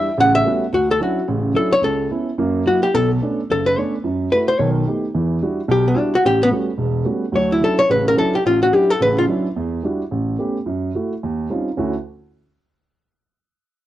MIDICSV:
0, 0, Header, 1, 3, 480
1, 0, Start_track
1, 0, Key_signature, 2, "major"
1, 0, Tempo, 276243
1, 1261, Time_signature, 4, 2, 24, 8
1, 24083, End_track
2, 0, Start_track
2, 0, Title_t, "Hollow-body jazz guitar"
2, 0, Program_c, 0, 26
2, 0, Note_on_c, 0, 76, 85
2, 304, Note_off_c, 0, 76, 0
2, 356, Note_on_c, 0, 78, 106
2, 603, Note_off_c, 0, 78, 0
2, 610, Note_on_c, 0, 76, 110
2, 1135, Note_off_c, 0, 76, 0
2, 1294, Note_on_c, 0, 66, 71
2, 1562, Note_off_c, 0, 66, 0
2, 1589, Note_on_c, 0, 69, 92
2, 1752, Note_off_c, 0, 69, 0
2, 1788, Note_on_c, 0, 66, 44
2, 2210, Note_off_c, 0, 66, 0
2, 2721, Note_on_c, 0, 69, 69
2, 2994, Note_off_c, 0, 69, 0
2, 3000, Note_on_c, 0, 73, 100
2, 3175, Note_off_c, 0, 73, 0
2, 3201, Note_on_c, 0, 69, 74
2, 3635, Note_off_c, 0, 69, 0
2, 4645, Note_on_c, 0, 66, 60
2, 4906, Note_off_c, 0, 66, 0
2, 4913, Note_on_c, 0, 67, 79
2, 5115, Note_off_c, 0, 67, 0
2, 5115, Note_on_c, 0, 69, 84
2, 5388, Note_off_c, 0, 69, 0
2, 6106, Note_on_c, 0, 69, 74
2, 6363, Note_off_c, 0, 69, 0
2, 6363, Note_on_c, 0, 71, 83
2, 6575, Note_off_c, 0, 71, 0
2, 6575, Note_on_c, 0, 73, 84
2, 6837, Note_off_c, 0, 73, 0
2, 7507, Note_on_c, 0, 71, 69
2, 7779, Note_off_c, 0, 71, 0
2, 7786, Note_on_c, 0, 72, 90
2, 7972, Note_off_c, 0, 72, 0
2, 7972, Note_on_c, 0, 73, 85
2, 8146, Note_off_c, 0, 73, 0
2, 9932, Note_on_c, 0, 67, 76
2, 10192, Note_off_c, 0, 67, 0
2, 10217, Note_on_c, 0, 59, 49
2, 10397, Note_off_c, 0, 59, 0
2, 10397, Note_on_c, 0, 62, 68
2, 10663, Note_off_c, 0, 62, 0
2, 10695, Note_on_c, 0, 66, 85
2, 10854, Note_off_c, 0, 66, 0
2, 10884, Note_on_c, 0, 67, 99
2, 11146, Note_off_c, 0, 67, 0
2, 11176, Note_on_c, 0, 59, 99
2, 11274, Note_off_c, 0, 59, 0
2, 12779, Note_on_c, 0, 73, 88
2, 13051, Note_off_c, 0, 73, 0
2, 13071, Note_on_c, 0, 64, 54
2, 13239, Note_off_c, 0, 64, 0
2, 13274, Note_on_c, 0, 69, 75
2, 13531, Note_on_c, 0, 73, 96
2, 13539, Note_off_c, 0, 69, 0
2, 13709, Note_off_c, 0, 73, 0
2, 13740, Note_on_c, 0, 71, 76
2, 14011, Note_off_c, 0, 71, 0
2, 14038, Note_on_c, 0, 70, 92
2, 14203, Note_off_c, 0, 70, 0
2, 14218, Note_on_c, 0, 69, 80
2, 14490, Note_off_c, 0, 69, 0
2, 14508, Note_on_c, 0, 67, 75
2, 14677, Note_off_c, 0, 67, 0
2, 14706, Note_on_c, 0, 65, 73
2, 14974, Note_off_c, 0, 65, 0
2, 14985, Note_on_c, 0, 66, 80
2, 15165, Note_off_c, 0, 66, 0
2, 15165, Note_on_c, 0, 67, 70
2, 15466, Note_off_c, 0, 67, 0
2, 15466, Note_on_c, 0, 69, 86
2, 15636, Note_off_c, 0, 69, 0
2, 15673, Note_on_c, 0, 71, 85
2, 15938, Note_off_c, 0, 71, 0
2, 15957, Note_on_c, 0, 65, 77
2, 16059, Note_off_c, 0, 65, 0
2, 24083, End_track
3, 0, Start_track
3, 0, Title_t, "Grand piano"
3, 0, Program_c, 1, 0
3, 303, Note_on_c, 1, 49, 81
3, 306, Note_on_c, 1, 33, 82
3, 715, Note_off_c, 1, 49, 0
3, 716, Note_off_c, 1, 33, 0
3, 788, Note_on_c, 1, 55, 55
3, 796, Note_on_c, 1, 59, 53
3, 797, Note_on_c, 1, 57, 52
3, 803, Note_on_c, 1, 61, 54
3, 810, Note_on_c, 1, 66, 65
3, 1097, Note_off_c, 1, 55, 0
3, 1101, Note_off_c, 1, 59, 0
3, 1102, Note_off_c, 1, 57, 0
3, 1105, Note_off_c, 1, 61, 0
3, 1108, Note_off_c, 1, 66, 0
3, 1267, Note_on_c, 1, 38, 62
3, 1675, Note_off_c, 1, 38, 0
3, 1747, Note_on_c, 1, 54, 48
3, 1749, Note_on_c, 1, 61, 51
3, 1755, Note_on_c, 1, 62, 43
3, 1762, Note_on_c, 1, 64, 60
3, 2055, Note_off_c, 1, 54, 0
3, 2056, Note_off_c, 1, 61, 0
3, 2059, Note_off_c, 1, 62, 0
3, 2062, Note_off_c, 1, 64, 0
3, 2228, Note_on_c, 1, 33, 74
3, 2228, Note_on_c, 1, 49, 73
3, 2634, Note_off_c, 1, 33, 0
3, 2634, Note_off_c, 1, 49, 0
3, 2680, Note_on_c, 1, 54, 53
3, 2690, Note_on_c, 1, 62, 51
3, 2693, Note_on_c, 1, 61, 50
3, 2695, Note_on_c, 1, 64, 58
3, 3000, Note_off_c, 1, 54, 0
3, 3005, Note_off_c, 1, 62, 0
3, 3007, Note_off_c, 1, 61, 0
3, 3008, Note_off_c, 1, 64, 0
3, 3155, Note_on_c, 1, 37, 68
3, 3575, Note_off_c, 1, 37, 0
3, 3664, Note_on_c, 1, 64, 58
3, 3667, Note_on_c, 1, 61, 46
3, 3668, Note_on_c, 1, 59, 53
3, 3971, Note_off_c, 1, 64, 0
3, 3972, Note_off_c, 1, 61, 0
3, 3973, Note_off_c, 1, 59, 0
3, 4138, Note_on_c, 1, 42, 77
3, 4141, Note_on_c, 1, 58, 76
3, 4546, Note_off_c, 1, 42, 0
3, 4548, Note_off_c, 1, 58, 0
3, 4621, Note_on_c, 1, 54, 51
3, 4626, Note_on_c, 1, 58, 49
3, 4640, Note_on_c, 1, 64, 54
3, 4929, Note_off_c, 1, 54, 0
3, 4931, Note_off_c, 1, 58, 0
3, 4938, Note_off_c, 1, 64, 0
3, 5109, Note_on_c, 1, 35, 72
3, 5120, Note_on_c, 1, 47, 70
3, 5512, Note_off_c, 1, 35, 0
3, 5517, Note_off_c, 1, 47, 0
3, 5589, Note_on_c, 1, 57, 50
3, 5593, Note_on_c, 1, 59, 46
3, 5597, Note_on_c, 1, 61, 47
3, 5602, Note_on_c, 1, 62, 61
3, 5892, Note_off_c, 1, 57, 0
3, 5893, Note_off_c, 1, 59, 0
3, 5896, Note_off_c, 1, 61, 0
3, 5898, Note_off_c, 1, 62, 0
3, 6078, Note_on_c, 1, 30, 67
3, 6475, Note_off_c, 1, 30, 0
3, 6553, Note_on_c, 1, 57, 52
3, 6562, Note_on_c, 1, 59, 48
3, 6571, Note_on_c, 1, 61, 46
3, 6575, Note_on_c, 1, 62, 60
3, 6852, Note_off_c, 1, 57, 0
3, 6857, Note_off_c, 1, 59, 0
3, 6861, Note_off_c, 1, 61, 0
3, 6863, Note_off_c, 1, 62, 0
3, 7019, Note_on_c, 1, 42, 68
3, 7424, Note_off_c, 1, 42, 0
3, 7499, Note_on_c, 1, 57, 52
3, 7504, Note_on_c, 1, 64, 51
3, 7510, Note_on_c, 1, 66, 57
3, 7804, Note_off_c, 1, 57, 0
3, 7807, Note_off_c, 1, 64, 0
3, 7810, Note_off_c, 1, 66, 0
3, 7980, Note_on_c, 1, 35, 70
3, 7984, Note_on_c, 1, 51, 74
3, 8384, Note_off_c, 1, 35, 0
3, 8386, Note_off_c, 1, 51, 0
3, 8453, Note_on_c, 1, 59, 45
3, 8463, Note_on_c, 1, 57, 50
3, 8468, Note_on_c, 1, 63, 45
3, 8470, Note_on_c, 1, 67, 57
3, 8760, Note_off_c, 1, 59, 0
3, 8765, Note_off_c, 1, 57, 0
3, 8767, Note_off_c, 1, 63, 0
3, 8768, Note_off_c, 1, 67, 0
3, 8940, Note_on_c, 1, 40, 66
3, 8943, Note_on_c, 1, 52, 63
3, 9343, Note_off_c, 1, 40, 0
3, 9344, Note_off_c, 1, 52, 0
3, 9422, Note_on_c, 1, 62, 48
3, 9423, Note_on_c, 1, 55, 50
3, 9429, Note_on_c, 1, 66, 59
3, 9436, Note_on_c, 1, 64, 47
3, 9723, Note_off_c, 1, 62, 0
3, 9724, Note_off_c, 1, 55, 0
3, 9727, Note_off_c, 1, 66, 0
3, 9731, Note_off_c, 1, 64, 0
3, 9878, Note_on_c, 1, 35, 79
3, 10290, Note_off_c, 1, 35, 0
3, 10338, Note_on_c, 1, 64, 52
3, 10345, Note_on_c, 1, 66, 60
3, 10346, Note_on_c, 1, 62, 51
3, 10347, Note_on_c, 1, 55, 51
3, 10660, Note_off_c, 1, 64, 0
3, 10664, Note_off_c, 1, 62, 0
3, 10664, Note_off_c, 1, 66, 0
3, 10665, Note_off_c, 1, 55, 0
3, 10862, Note_on_c, 1, 33, 72
3, 11262, Note_off_c, 1, 33, 0
3, 11316, Note_on_c, 1, 55, 54
3, 11326, Note_on_c, 1, 57, 46
3, 11330, Note_on_c, 1, 59, 44
3, 11330, Note_on_c, 1, 61, 50
3, 11332, Note_on_c, 1, 66, 56
3, 11628, Note_off_c, 1, 55, 0
3, 11633, Note_off_c, 1, 57, 0
3, 11635, Note_off_c, 1, 59, 0
3, 11635, Note_off_c, 1, 61, 0
3, 11636, Note_off_c, 1, 66, 0
3, 11776, Note_on_c, 1, 28, 77
3, 12196, Note_off_c, 1, 28, 0
3, 12243, Note_on_c, 1, 55, 54
3, 12247, Note_on_c, 1, 57, 51
3, 12255, Note_on_c, 1, 59, 52
3, 12256, Note_on_c, 1, 61, 48
3, 12257, Note_on_c, 1, 66, 63
3, 12571, Note_off_c, 1, 55, 0
3, 12573, Note_off_c, 1, 57, 0
3, 12577, Note_off_c, 1, 59, 0
3, 12577, Note_off_c, 1, 61, 0
3, 12577, Note_off_c, 1, 66, 0
3, 12720, Note_on_c, 1, 38, 70
3, 12732, Note_on_c, 1, 54, 68
3, 13147, Note_off_c, 1, 38, 0
3, 13153, Note_off_c, 1, 54, 0
3, 13223, Note_on_c, 1, 54, 50
3, 13236, Note_on_c, 1, 61, 46
3, 13250, Note_on_c, 1, 62, 48
3, 13250, Note_on_c, 1, 64, 61
3, 13540, Note_off_c, 1, 54, 0
3, 13546, Note_off_c, 1, 61, 0
3, 13553, Note_off_c, 1, 62, 0
3, 13553, Note_off_c, 1, 64, 0
3, 13714, Note_on_c, 1, 49, 79
3, 13720, Note_on_c, 1, 33, 72
3, 14124, Note_off_c, 1, 49, 0
3, 14127, Note_off_c, 1, 33, 0
3, 14180, Note_on_c, 1, 61, 51
3, 14185, Note_on_c, 1, 54, 54
3, 14198, Note_on_c, 1, 62, 53
3, 14198, Note_on_c, 1, 64, 59
3, 14498, Note_off_c, 1, 61, 0
3, 14500, Note_off_c, 1, 54, 0
3, 14507, Note_off_c, 1, 62, 0
3, 14507, Note_off_c, 1, 64, 0
3, 14687, Note_on_c, 1, 33, 70
3, 15091, Note_off_c, 1, 33, 0
3, 15159, Note_on_c, 1, 54, 48
3, 15177, Note_on_c, 1, 61, 43
3, 15178, Note_on_c, 1, 64, 62
3, 15180, Note_on_c, 1, 62, 51
3, 15467, Note_off_c, 1, 54, 0
3, 15476, Note_off_c, 1, 61, 0
3, 15477, Note_off_c, 1, 64, 0
3, 15478, Note_off_c, 1, 62, 0
3, 15639, Note_on_c, 1, 49, 75
3, 15645, Note_on_c, 1, 33, 73
3, 16047, Note_off_c, 1, 49, 0
3, 16050, Note_off_c, 1, 33, 0
3, 16125, Note_on_c, 1, 54, 52
3, 16132, Note_on_c, 1, 61, 47
3, 16145, Note_on_c, 1, 62, 49
3, 16146, Note_on_c, 1, 64, 58
3, 16431, Note_off_c, 1, 54, 0
3, 16435, Note_off_c, 1, 61, 0
3, 16441, Note_off_c, 1, 62, 0
3, 16441, Note_off_c, 1, 64, 0
3, 16617, Note_on_c, 1, 40, 71
3, 17018, Note_off_c, 1, 40, 0
3, 17091, Note_on_c, 1, 55, 51
3, 17095, Note_on_c, 1, 64, 49
3, 17105, Note_on_c, 1, 62, 49
3, 17114, Note_on_c, 1, 66, 58
3, 17395, Note_off_c, 1, 55, 0
3, 17397, Note_off_c, 1, 64, 0
3, 17402, Note_off_c, 1, 62, 0
3, 17407, Note_off_c, 1, 66, 0
3, 17569, Note_on_c, 1, 33, 71
3, 17975, Note_off_c, 1, 33, 0
3, 18036, Note_on_c, 1, 57, 54
3, 18044, Note_on_c, 1, 61, 43
3, 18049, Note_on_c, 1, 59, 46
3, 18055, Note_on_c, 1, 67, 59
3, 18349, Note_off_c, 1, 57, 0
3, 18353, Note_off_c, 1, 61, 0
3, 18355, Note_off_c, 1, 59, 0
3, 18358, Note_off_c, 1, 67, 0
3, 18520, Note_on_c, 1, 42, 65
3, 18932, Note_off_c, 1, 42, 0
3, 19026, Note_on_c, 1, 64, 47
3, 19027, Note_on_c, 1, 66, 55
3, 19029, Note_on_c, 1, 57, 49
3, 19326, Note_off_c, 1, 64, 0
3, 19327, Note_off_c, 1, 66, 0
3, 19328, Note_off_c, 1, 57, 0
3, 19520, Note_on_c, 1, 39, 69
3, 19916, Note_off_c, 1, 39, 0
3, 19984, Note_on_c, 1, 55, 50
3, 19985, Note_on_c, 1, 61, 45
3, 19986, Note_on_c, 1, 60, 45
3, 19998, Note_on_c, 1, 63, 49
3, 20003, Note_on_c, 1, 65, 59
3, 20288, Note_off_c, 1, 55, 0
3, 20289, Note_off_c, 1, 60, 0
3, 20289, Note_off_c, 1, 61, 0
3, 20295, Note_off_c, 1, 63, 0
3, 20298, Note_off_c, 1, 65, 0
3, 20457, Note_on_c, 1, 61, 63
3, 20459, Note_on_c, 1, 38, 63
3, 20471, Note_on_c, 1, 50, 59
3, 20476, Note_on_c, 1, 64, 59
3, 20478, Note_on_c, 1, 66, 71
3, 20718, Note_off_c, 1, 61, 0
3, 20719, Note_off_c, 1, 38, 0
3, 20725, Note_off_c, 1, 50, 0
3, 20728, Note_off_c, 1, 64, 0
3, 20728, Note_off_c, 1, 66, 0
3, 24083, End_track
0, 0, End_of_file